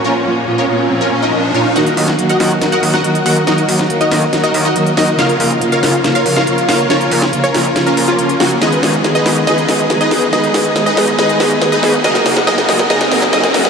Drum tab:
HH |----------------|xxo-xxoxxxo-xxox|xxo-xxoxxxoxxxox|xxoxxxoxxxo-xxox|
SD |----------------|o--o--o-o--o----|o--o--o-o-----o-|o-----o-o--o--o-|

HH |xxoxxxoxxxoxxxox|xxoxxxoxxxoxxxox|xxoxxxo-xxoxxxox|xxo-xxoxxxo-xxox|
SD |o--o--o-o-----o-|o-o-o-o-o-o-o-o-|o-o-o-o-o-o-o-o-|oooooooooooooooo|